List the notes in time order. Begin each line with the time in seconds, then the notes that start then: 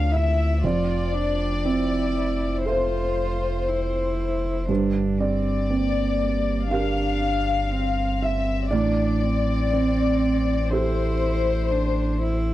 Already playing: D2 F3 D4 A4 F5
0.12 E4 E5
0.62 F1 F2 F4 D5
1.14 D4
1.64 C4 E4
2.65 F4 A4 C5 E5
3.68 E4
4.69 G1 G2 D4
5.19 C4 D5
5.70 A#3 C4
6.70 D4 G4 A#4 F5
7.71 C4
8.21 E5
8.71 A1 A2 D4 D5
9.22 C4
9.73 C4
10.71 E4 G4 A4 C5
11.71 D4
12.22 E4